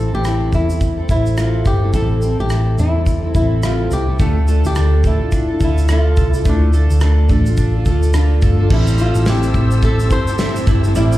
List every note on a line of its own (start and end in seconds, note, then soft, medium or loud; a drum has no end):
0.00 0.10 A1 loud
0.00 0.13 G3 medium
0.00 0.26 A3 medium
0.00 0.13 C4 medium
0.00 0.12 E4 medium
0.00 0.11 A4 medium
0.00 0.14 A4 medium
0.00 0.26 A4 medium
0.12 0.50 A1 medium
0.12 0.24 G3 soft
0.12 0.25 C4 soft
0.12 0.25 E4 soft
0.12 0.55 G4 medium
0.12 0.24 A4 soft
0.24 0.53 A2 medium
0.24 0.53 E3 medium
0.24 0.51 G3 medium
0.24 0.52 C4 medium
0.24 0.53 E4 medium
0.24 0.54 A4 medium
0.24 cross-stick medium
0.24 shaker soft
0.52 1.05 E2 medium
0.52 0.70 G3 medium
0.52 0.70 C4 medium
0.52 1.06 E4 medium
0.52 0.69 E4 medium
0.52 0.68 A4 medium
0.52 kick medium
0.52 shaker soft
0.69 1.00 G3 soft
0.69 0.99 C4 soft
0.69 0.98 E4 soft
0.69 0.96 A4 soft
0.69 shaker soft
0.81 kick medium
0.81 shaker medium
0.97 1.08 G3 soft
0.97 1.09 C4 soft
0.97 1.10 E4 soft
0.97 1.09 A4 soft
1.09 1.62 A1 medium
1.09 1.36 G3 medium
1.09 1.37 C4 medium
1.09 1.39 E4 medium
1.09 1.37 E4 medium
1.09 1.38 A4 medium
1.09 kick medium
1.09 shaker medium
1.26 shaker soft
1.37 1.82 A2 medium
1.37 1.83 E3 medium
1.37 1.83 G3 medium
1.37 1.83 C4 medium
1.37 1.82 E4 medium
1.37 1.67 F4 medium
1.37 1.81 A4 medium
1.37 cross-stick medium
1.37 shaker medium
1.65 1.92 G1 medium
1.65 1.93 G4 medium
1.65 kick medium
1.65 cross-stick soft
1.65 shaker medium
1.82 1.93 G3 soft
1.82 1.94 C4 soft
1.82 1.94 E4 soft
1.82 1.94 A4 soft
1.94 2.35 A1 loud
1.94 2.22 A2 medium
1.94 2.23 E3 medium
1.94 2.20 G3 medium
1.94 2.22 C4 medium
1.94 2.23 E4 medium
1.94 2.40 A4 medium
1.94 2.23 A4 medium
1.94 kick loud
1.94 shaker medium
2.22 2.39 G3 medium
2.22 2.40 C4 medium
2.22 2.39 E4 medium
2.22 2.38 A4 medium
2.22 shaker soft
2.39 2.76 A1 medium
2.39 2.50 G3 soft
2.39 2.50 C4 soft
2.39 2.51 E4 soft
2.39 2.80 G4 medium
2.39 2.50 A4 soft
2.50 2.79 A2 medium
2.50 2.79 E3 medium
2.50 2.76 G3 medium
2.50 2.77 C4 medium
2.50 2.78 E4 medium
2.50 2.79 A4 medium
2.50 cross-stick medium
2.50 shaker soft
2.77 3.31 E2 medium
2.77 2.95 G3 medium
2.77 2.96 C4 medium
2.77 2.94 E4 medium
2.77 3.35 E4 medium
2.77 2.93 A4 medium
2.77 shaker soft
2.94 3.25 G3 soft
2.94 3.24 C4 soft
2.94 3.23 E4 soft
2.94 3.21 A4 soft
3.06 kick medium
3.06 shaker medium
3.22 3.33 G3 soft
3.22 3.35 C4 soft
3.22 3.35 E4 soft
3.22 3.34 A4 soft
3.34 3.87 A1 medium
3.34 3.63 G3 medium
3.34 3.63 C4 medium
3.34 3.62 E4 medium
3.34 3.64 E4 medium
3.34 3.64 A4 medium
3.34 kick medium
3.34 shaker medium
3.63 4.08 A2 medium
3.63 4.09 E3 medium
3.63 4.09 G3 medium
3.63 4.09 C4 medium
3.63 4.08 E4 medium
3.63 3.90 F4 medium
3.63 4.06 A4 medium
3.63 cross-stick loud
3.63 shaker medium
3.91 4.17 C2 medium
3.91 4.21 G4 medium
3.91 cross-stick soft
3.91 shaker medium
4.08 4.20 G3 soft
4.08 4.20 C4 soft
4.08 4.20 E4 medium
4.08 4.19 A4 soft
4.19 4.61 D2 loud
4.19 4.36 D3 medium
4.19 6.45 A3 medium
4.19 4.37 A3 medium
4.19 4.37 D4 medium
4.19 4.37 F4 medium
4.19 4.66 A4 medium
4.19 4.35 A4 medium
4.19 kick loud
4.19 shaker medium
4.36 4.48 D4 soft
4.36 4.49 F4 soft
4.36 4.48 A4 soft
4.47 4.65 A3 medium
4.47 4.65 D4 medium
4.47 4.65 F4 medium
4.47 5.04 A4 medium
4.47 4.63 A4 medium
4.47 shaker soft
4.64 5.04 D2 medium
4.64 4.76 D4 soft
4.64 4.76 F4 soft
4.64 5.06 G4 medium
4.64 4.76 A4 soft
4.64 shaker soft
4.75 5.04 D3 medium
4.75 5.02 A3 medium
4.75 5.32 D4 medium
4.75 5.03 D4 medium
4.75 5.04 F4 medium
4.75 5.05 A4 medium
4.75 cross-stick medium
4.75 shaker medium
5.03 5.57 A1 medium
5.03 5.21 A3 medium
5.03 5.21 D4 medium
5.03 5.63 E4 medium
5.03 5.21 F4 medium
5.03 5.61 A4 medium
5.03 5.19 A4 medium
5.03 kick medium
5.03 shaker soft
5.20 5.51 D4 soft
5.20 5.49 F4 soft
5.20 5.47 A4 medium
5.32 5.87 D4 medium
5.32 kick medium
5.32 shaker medium
5.48 5.60 D4 soft
5.48 5.61 F4 soft
5.48 5.60 A4 medium
5.60 6.13 D2 medium
5.60 5.88 A3 medium
5.60 5.88 D4 medium
5.60 5.89 F4 medium
5.60 6.16 A4 medium
5.60 5.89 A4 medium
5.60 kick medium
5.60 shaker medium
5.64 5.91 E4 medium
5.78 shaker soft
5.88 6.34 D3 medium
5.88 6.34 A3 medium
5.88 7.01 D4 medium
5.88 6.34 D4 medium
5.88 6.34 F4 medium
5.88 6.32 A4 medium
5.88 cross-stick loud
5.88 shaker medium
5.92 6.29 F4 medium
6.17 6.43 C2 medium
6.17 6.73 A4 medium
6.17 kick medium
6.17 shaker soft
6.29 6.43 E4 medium
6.33 6.45 D4 soft
6.33 6.45 F4 soft
6.33 6.45 A4 medium
6.33 shaker soft
6.44 6.87 D2 loud
6.44 6.73 D3 medium
6.44 6.71 A3 medium
6.44 8.70 A3 medium
6.44 6.72 D4 medium
6.44 6.73 F4 medium
6.44 6.74 A4 medium
6.44 kick loud
6.44 shaker medium
6.49 8.12 D4 medium
6.72 6.90 A3 medium
6.72 6.90 D4 medium
6.72 6.90 F4 medium
6.72 7.30 A4 medium
6.72 6.88 A4 medium
6.72 shaker soft
6.89 7.27 D2 medium
6.89 7.00 D4 soft
6.89 7.01 F4 soft
6.89 7.01 A4 medium
6.89 shaker soft
7.00 7.29 D3 medium
7.00 7.27 A3 medium
7.00 7.29 D4 medium
7.00 7.56 D4 medium
7.00 7.29 F4 medium
7.00 7.30 A4 medium
7.00 cross-stick loud
7.00 shaker medium
7.28 7.82 A1 medium
7.28 7.46 A3 medium
7.28 7.47 D4 medium
7.28 7.46 F4 medium
7.28 7.85 A4 medium
7.28 7.44 A4 medium
7.28 kick medium
7.28 shaker soft
7.45 7.76 D4 soft
7.45 7.75 F4 medium
7.45 7.73 A4 medium
7.45 shaker soft
7.57 8.13 D4 medium
7.57 kick medium
7.57 shaker medium
7.74 7.85 D4 soft
7.74 7.87 F4 medium
7.74 7.86 A4 medium
7.85 8.38 D2 medium
7.85 8.12 A3 medium
7.85 8.13 D4 medium
7.85 8.13 F4 medium
7.85 8.42 A4 medium
7.85 8.14 A4 medium
7.85 kick medium
7.85 shaker medium
8.03 shaker soft
8.13 8.59 D3 medium
8.13 8.59 A3 medium
8.13 8.77 D4 medium
8.13 8.59 D4 medium
8.13 8.58 F4 medium
8.13 8.56 A4 medium
8.13 cross-stick loud
8.13 shaker medium
8.42 8.68 G1 medium
8.42 8.98 A4 medium
8.42 kick medium
8.42 cross-stick soft
8.42 shaker medium
8.57 8.70 D4 medium
8.57 8.71 F4 medium
8.57 8.70 A4 medium
8.69 9.12 A1 loud
8.69 8.98 A2 medium
8.69 8.98 E3 medium
8.69 8.95 G3 medium
8.69 10.94 G3 medium
8.69 8.97 C4 medium
8.69 8.98 E4 medium
8.69 11.18 G4 medium
8.69 8.99 A4 medium
8.69 11.18 C5 medium
8.69 11.18 A5 medium
8.69 10.93 E6 medium
8.69 kick loud
8.69 crash loud
8.74 9.01 E4 medium
8.87 shaker medium
8.97 9.25 G3 medium
8.97 9.25 C4 medium
8.97 9.26 E4 medium
8.97 9.26 A4 medium
8.97 9.53 C5 medium
8.97 shaker soft
9.01 9.26 F4 medium
9.15 9.52 A1 medium
9.15 shaker medium
9.25 9.54 A2 medium
9.25 9.55 E3 medium
9.25 9.53 G3 medium
9.25 9.54 C4 medium
9.25 10.66 E4 medium
9.25 9.55 E4 medium
9.25 9.55 A4 medium
9.25 snare loud
9.25 shaker medium
9.29 9.84 G4 medium
9.43 shaker medium
9.54 10.11 A1 loud
9.54 9.71 G3 medium
9.54 9.72 C4 medium
9.54 9.71 E4 medium
9.54 9.70 A4 medium
9.54 10.10 C5 medium
9.54 kick medium
9.54 shaker soft
9.71 10.01 G3 soft
9.71 10.01 C4 soft
9.71 9.99 E4 medium
9.71 9.98 A4 medium
9.71 shaker medium
9.82 10.12 A4 medium
9.82 10.39 E5 medium
9.82 kick medium
9.82 shaker medium
9.99 10.29 G3 soft
9.99 10.29 C4 medium
9.99 10.28 E4 soft
9.99 10.27 A4 soft
9.99 shaker medium
10.11 10.63 G1 medium
10.11 11.18 C5 medium
10.11 10.64 C5 medium
10.11 kick medium
10.11 shaker medium
10.27 10.40 C4 soft
10.27 10.40 E4 soft
10.27 10.39 A4 medium
10.27 shaker soft
10.31 10.39 G3 soft
10.39 10.68 A2 medium
10.39 10.68 E3 medium
10.39 10.66 G3 medium
10.39 10.67 C4 medium
10.39 10.68 E4 medium
10.39 10.69 A4 medium
10.39 11.18 E5 medium
10.39 snare loud
10.39 shaker medium
10.56 shaker medium
10.67 10.93 G1 medium
10.67 10.84 G3 medium
10.67 10.85 C4 medium
10.67 11.18 E4 medium
10.67 10.84 E4 medium
10.67 10.82 A4 medium
10.67 kick loud
10.67 snare soft
10.67 shaker medium
10.84 10.95 G3 soft
10.84 10.96 C4 medium
10.84 10.96 E4 medium
10.84 10.95 A4 medium
10.84 shaker soft
10.94 11.18 A1 loud
10.94 11.18 A2 medium
10.94 11.18 E3 medium
10.94 11.18 G3 medium
10.94 11.18 C4 medium
10.94 11.18 E4 medium
10.94 11.18 A4 medium
10.94 11.18 D6 medium
10.94 shaker medium
11.12 shaker medium